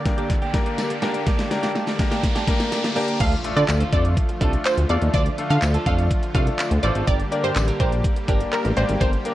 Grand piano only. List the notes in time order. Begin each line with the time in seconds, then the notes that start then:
0.05 A#3 D4 G4 A#4
0.54 A#3 D4 G4 A#4
1.02 A#3 D4 G4 A#4
1.51 A#3 D4 G4 A#4
1.99 A#3 D4 G4 A#4
2.47 A#3 D4 G4 A#4
2.96 A#3 D4 G4 A#4
3.44 A3 D4 F4 A4 D5
3.93 A3 D4 F4 A4 D5
4.41 A3 D4 F4 A4 D5
4.89 A3 D4 F4 A4 F5
5.38 A3 D4 F4 A4 F5
5.86 A3 D4 F4 A4 D5
6.35 A3 D4 F4 A4 D5
6.83 A3 D4 F4 A4 C5
7.31 A#3 D4 G4 A#4 D5
7.80 A#3 D4 G4 A#4 D5
8.28 A#3 D4 G4 A#4 D5
8.77 A#3 D4 G4 A#4 D5
9.25 A#3 D4 G4 A#4 D5